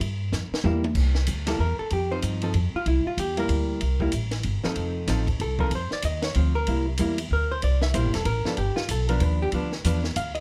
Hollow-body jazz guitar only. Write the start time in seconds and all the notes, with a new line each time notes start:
0.64 G3 A#3 E4
1.47 G3 A#3 E4 A4
1.60 A#4
1.79 A4
1.93 G4
2.11 F3 C4 D#4 C5
2.43 F3 C4 D#4 A4
2.76 F4
2.88 E4
3.07 F4
3.20 G4
3.37 G3 A#3 E4 A#4
4.00 G3 A#3 E4
4.64 F3 C4 D#4 A4
5.08 F3 C4 D#4 A4
5.41 A4
5.59 F3 C4 D#4 A4 A#4
5.75 C5
5.93 D5
6.05 D#5
6.24 C#5
6.36 F3 C4
6.55 A#4
6.68 G3 A#3 E4
6.99 G3 A#3 E4
7.33 A#4
7.51 C5
7.64 D5
7.83 E5
7.94 G3 A#3 E4 C5
8.15 A4
8.26 A#4
8.46 F3 B3 D4 A4
8.58 G4
8.76 F4
8.91 A4
9.09 F3 B3 D4 A#4
9.22 B4
9.42 G4
9.54 F3 B3 D4
9.85 F3 B3 D4
10.17 F5
10.35 D#5